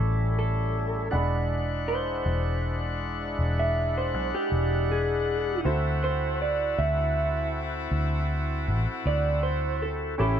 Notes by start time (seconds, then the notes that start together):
Already playing: G3 A3 C#4 E4 G4 A4
0.00 A1
0.39 A4
1.10 E1 G#3 D4 E4 F#5 B5
1.88 C5
2.26 E1
3.39 E1
3.59 E5
3.98 C5
4.14 B1
4.34 G4
4.52 E1
4.91 G#4
5.64 D2 C4 E4 F#4 A4 C5
6.04 C5
6.42 D5
6.78 D2 E5
7.91 D2
8.68 A1
9.06 D2 D5
9.43 C5
9.82 A4
10.18 A1 A3 C#4 E4 G4 A4 B5